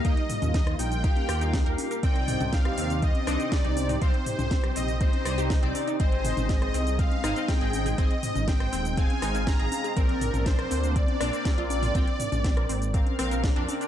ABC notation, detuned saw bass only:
X:1
M:4/4
L:1/16
Q:1/4=121
K:Cm
V:1 name="Detuned saw bass" clef=bass
E,, z2 E,,3 B,,,3 z E,,3 E,, z2 | C,,3 C,,3 E,,3 z C,, z2 C,,3 | C,, z2 C,,3 B,,,3 z C,,3 C,, z2 | A,,,3 A,,,3 C,,3 z A,,, z2 A,,,3 |
A,,, z2 A,,,3 E,,,3 z A,,,3 A,,, z2 | B,,,3 B,,,3 D,,3 z B,,, z2 B,,,3 | B,,, z2 B,,,3 A,,,3 z B,,,3 F,, z2 |]